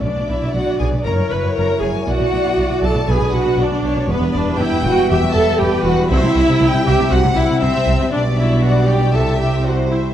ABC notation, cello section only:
X:1
M:4/4
L:1/16
Q:1/4=118
K:Bdor
V:1 name="Cello section" clef=bass
B,, B,, B,, B,, B,, B,, B,, B,, F,, F,, F,, F,, F,, F,, F,, F,, | B,, B,, B,, B,, B,, B,, B,, B,, B,, B,, B,, B,, B,, B,, B,, B,, | [K:Clyd] E,, E,, E,, E,, E,, E,, E,, E,, E,, E,, E,, E,, E,, E,, E,, E,, | C, C, C, C, C, C, C, C, C, C, C, C, C, C, C, C, |
B,,8 C,8 |]